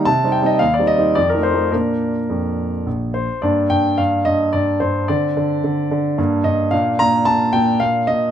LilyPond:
<<
  \new Staff \with { instrumentName = "Grand piano" } { \time 3/4 \key bes \major \tempo 4 = 109 << { a''8 g''16 ees''16 f''16 d''16 ees''8 d''16 bes'16 c''8 | bes'2 r8 c''8 | \key g \minor d''8 g''8 f''8 ees''8 d''8 c''8 | d''2 r8 ees''8 |
f''8 bes''8 a''8 g''8 f''8 ees''8 | } \\ { r2. | r2. | <bes d'>2. | <c' d'>2 <bes d'>4 |
<bes d'>2. | } >> }
  \new Staff \with { instrumentName = "Grand piano" } { \clef bass \time 3/4 \key bes \major \tuplet 3/2 { c8 <g c' ees'>8 <g c' ees'>8 ees,8 <g c' ees'>8 <g c' ees'>8 f,8 <f a ees'>8 <f a ees'>8 } | <bes, bes d'>4 f,4 bes,,4 | \key g \minor g,8 g,8 g,8 g,8 g,8 g,8 | d8 d8 d8 d8 g,8 g,8 |
bes,8 bes,8 bes,8 bes,8 bes,8 bes,8 | }
>>